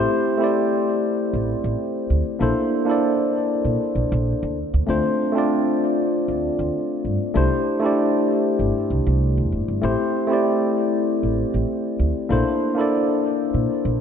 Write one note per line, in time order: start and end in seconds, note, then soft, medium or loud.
0.00 0.36 A3 medium
0.00 0.36 C4 medium
0.00 0.37 E4 medium
0.00 0.37 G4 medium
0.00 0.37 C5 medium
0.38 2.36 A3 medium
0.38 2.37 C4 medium
0.38 2.37 E4 medium
0.42 2.38 G4 medium
0.42 2.39 D5 medium
1.33 1.53 A1 medium
1.64 1.74 A1 medium
2.10 2.20 D2 medium
2.39 2.51 A#1 medium
2.39 2.83 A#3 medium
2.39 2.84 D4 medium
2.39 2.84 E4 medium
2.39 2.85 A4 medium
2.39 2.85 C5 medium
2.85 4.54 A#3 medium
2.85 4.55 D4 medium
2.85 4.56 E4 medium
2.90 4.56 A4 medium
2.90 4.57 D5 medium
3.65 3.75 A#2 medium
3.95 4.06 A#1 medium
4.12 4.31 A#1 medium
4.43 4.62 D2 medium
4.74 4.83 D2 medium
4.87 4.99 D2 medium
4.87 5.31 A3 medium
4.87 5.31 C4 medium
4.87 5.32 D4 medium
4.87 5.32 F4 medium
4.87 5.32 C5 medium
5.32 7.31 A3 medium
5.32 7.31 C4 medium
5.32 7.32 D4 medium
5.37 7.33 F4 medium
5.37 7.34 D5 loud
6.28 6.47 D2 medium
6.59 6.68 D2 medium
7.05 7.15 G2 medium
7.34 7.46 C2 medium
7.34 7.78 A3 medium
7.34 7.79 D4 medium
7.34 7.79 E4 medium
7.34 7.79 G4 medium
7.34 7.80 C5 medium
7.80 9.78 A3 medium
7.80 9.79 D4 medium
7.80 9.80 E4 medium
7.84 9.80 G4 medium
7.84 9.81 D5 medium
8.59 8.70 G1 medium
8.90 9.01 C2 medium
9.06 9.39 C2 medium
9.37 9.54 E2 medium
9.52 9.63 G1 medium
9.68 9.78 G1 medium
9.82 9.93 A1 medium
9.82 10.26 A3 medium
9.82 10.26 C4 medium
9.82 10.26 E4 medium
9.82 10.27 G4 medium
9.82 10.27 C5 medium
10.27 12.25 A3 medium
10.27 12.26 C4 medium
10.27 12.27 E4 medium
10.32 12.28 G4 medium
10.32 12.29 D5 medium
11.23 11.42 A1 medium
11.54 11.63 A1 medium
11.99 12.10 D2 medium
12.29 12.41 A#1 medium
12.29 12.73 A#3 medium
12.29 12.73 D4 medium
12.29 12.74 E4 medium
12.29 12.74 A4 medium
12.29 12.75 C5 medium
12.75 14.01 A#3 medium
12.75 14.01 D4 medium
12.75 14.01 E4 medium
12.79 14.01 A4 medium
12.79 14.01 D5 medium
13.54 13.64 A#2 medium
13.85 13.95 A#1 medium